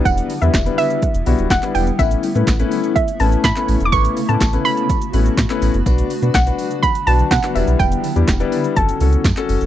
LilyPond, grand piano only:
\new Staff \with { instrumentName = "Grand piano" } { \time 4/4 \key a \mixolydian \tempo 4 = 124 <g b d' e' b'>8 r16 <g b d' e' b'>16 r16 <g b d' e' b'>8. r8 <g b d' e' fis'>8 r16 <g b d' e' b'>8 r16 | <a b cis' e' b'>8 r16 <a b cis' e' b'>16 r16 <a b cis' e' b'>8. r8 <a b cis' e' b'>8 r16 <a b cis' e' b'>8 r16 | <a b cis' e' b'>8 r16 <a b cis' e' b'>16 r16 <a b cis' e' b'>8. r8 <a b cis' e' b'>8 r16 <a b cis' e' b'>8 r16 | <d' fis' b'>8 r16 <d' fis' b'>16 r16 <d' fis' b'>8. r8 <d' fis' b'>8 r16 <d' fis' b'>16 <g b d' e' b'>8~ |
<g b d' e' b'>8 r16 <g b d' e' g'>16 r16 <g b d' e' b'>8. <cis' fis' a'>8 <cis' fis' a'>8 r16 <cis' fis' a'>8 r16 | }